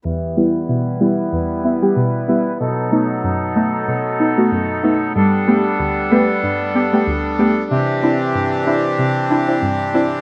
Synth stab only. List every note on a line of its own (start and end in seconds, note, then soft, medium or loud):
0.05 0.54 E2 medium
0.37 0.51 G3 medium
0.37 0.51 B3 medium
0.37 0.51 E4 medium
0.69 1.18 B2 medium
1.00 1.15 G3 medium
1.00 1.15 B3 medium
1.00 1.15 E4 medium
1.33 1.82 E2 medium
1.64 1.72 B3 medium
1.64 1.72 E4 loud
1.82 1.93 G3 medium
1.82 1.94 B3 medium
1.82 1.94 G4 medium
1.96 2.45 B2 medium
2.28 2.43 G3 medium
2.28 2.43 B3 medium
2.28 2.43 E4 medium
2.60 3.09 B2 medium
2.92 3.06 A3 medium
2.92 3.06 B3 medium
2.92 3.07 D#4 medium
3.24 3.73 F#2 medium
3.56 3.70 A3 medium
3.56 3.70 B3 medium
3.56 3.70 D#4 medium
3.88 4.37 B2 medium
4.20 4.27 B3 medium
4.20 4.27 D#4 medium
4.38 4.49 A3 medium
4.38 4.49 B3 medium
4.38 4.49 F#4 medium
4.52 5.01 F#2 medium
4.83 4.98 A3 medium
4.83 4.98 B3 medium
4.83 4.98 D#4 medium
5.16 5.64 G2 medium
5.47 5.62 A3 medium
5.47 5.62 B3 medium
5.47 5.62 G4 medium
5.79 6.28 D2 medium
6.11 6.25 A3 medium
6.11 6.26 B3 medium
6.11 6.26 G4 medium
6.43 6.92 G2 medium
6.75 6.82 B3 medium
6.75 6.82 G4 medium
6.93 7.04 A3 medium
6.93 7.04 B3 medium
6.93 7.04 G4 medium
7.07 7.56 D2 medium
7.39 7.53 A3 medium
7.39 7.53 B3 medium
7.39 7.53 G4 medium
7.71 8.20 C3 medium
8.03 8.17 C4 medium
8.03 8.17 D4 medium
8.03 8.17 E4 medium
8.35 8.84 G2 medium
8.67 8.81 C4 medium
8.67 8.81 D4 medium
8.67 8.81 E4 medium
8.99 9.47 C3 medium
9.30 9.37 D4 medium
9.30 9.38 E4 loud
9.48 9.59 C4 medium
9.48 9.60 D4 medium
9.48 9.60 E4 medium
9.62 10.11 G2 medium
9.94 10.08 C4 medium
9.94 10.09 D4 medium
9.94 10.09 E4 medium